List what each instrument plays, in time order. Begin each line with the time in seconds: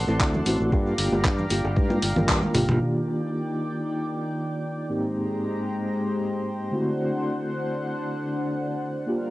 Already playing: analog synth pad A4 D5 F#5 C6
0.07 fingered electric bass A1, reed electric piano A3 C4 E4 A4, maracas
0.20 fingered electric bass D2, kick, clap, maracas
0.34 high bongo, high conga, low conga, maracas
0.46 fingered electric bass A1, reed electric piano A3 C4 E4 F#4, open hi-hat, maracas
0.60 fingered electric bass A1, maracas
0.72 fingered electric bass G2, reed electric piano A#3 D4 G4, analog synth pad G4 F5 A#5, kick, high bongo, maracas
0.86 maracas
0.98 fingered electric bass G1, open hi-hat, maracas
1.12 fingered electric bass G1, reed electric piano A#3 D4 F4 G4, high conga, maracas
1.24 fingered electric bass G2, kick, clap, high bongo, maracas
1.38 low conga, maracas
1.50 fingered electric bass G1, reed electric piano A#3 D4 F4 G4, open hi-hat, maracas
1.65 fingered electric bass G1, high bongo, maracas
1.77 fingered electric bass G2, kick, high tom, high conga, maracas
1.90 reed electric piano A#3 D4 F4 G4, high tom, maracas
2.02 fingered electric bass G1, open hi-hat, maracas
2.16 fingered electric bass G1, reed electric piano A#3 D4 F4 A#4, mid tom, high bongo, low conga, maracas
2.29 fingered electric bass G2, kick, clap, mid tom, maracas
2.43 high conga, maracas
2.54 fingered electric bass G1, reed electric piano A#3 D4 F4 G4, mid tom, open hi-hat, high bongo, maracas
2.68 fingered electric bass G1, mid tom, low conga, maracas
2.81 reed electric piano D#3 A#3 D4 F4 G4, analog synth pad D#3 D5 G5
4.89 reed electric piano G#2 A#3 C4 D#4 G4, analog synth pad G#3 G4 C5 A#5
6.71 reed electric piano D3 A3 C4 E4 F#4, analog synth pad D3 D4 F#5
9.07 analog synth pad G3 D4 A#4 F5, reed electric piano A#3 D4 F4 G4